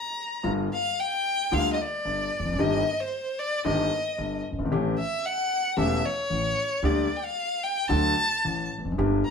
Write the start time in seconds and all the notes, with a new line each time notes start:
Already playing: A#5
0.43 G1 G2 D3 G3 A#3 F4
0.74 F5
1.00 G5
1.51 D2 D3 G3 A#3 F4 F5
1.73 D#5
1.81 D5
2.05 G1 G2
2.39 E1 E2
2.45 F1 F2
2.52 F#1 F#2
2.58 G1 G2 D#3 G3 A#3 G4 D#5
3.00 C5
3.39 D5
3.65 G1 G2 D#3 G3 A#3 G4 D#5
4.18 G1 G2
4.51 F#1
4.59 G1
4.65 G#1
4.71 A1 A2 E3 A3 C#4 G4
4.99 E5
5.26 F#5
5.77 E1 E2 E3 A3 C#4 G4 E5
6.06 C#5
6.30 A1 A2
6.83 D2 D3 G3 A#3 G4 D5
7.17 G5
7.25 F5
7.64 G5
7.89 D2 D3 F#3 A3 F#4 A5
8.44 A1 A2
8.78 E1 E2
8.85 F1 F2
8.92 F#1 F#2
8.98 G1 G2 D3 G3 A#3 G4
9.26 A#5